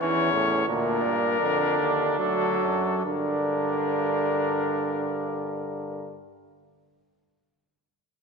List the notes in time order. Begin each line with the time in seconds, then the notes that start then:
0.00 E2 E3 C#4 C#5
0.33 A2
0.68 D2 A#2 D4 A#4
1.03 G2
1.40 F2 D3
1.79 D#2
2.18 D2 F#3 A4
2.62 F#2
3.05 G2 D3 D4 A#4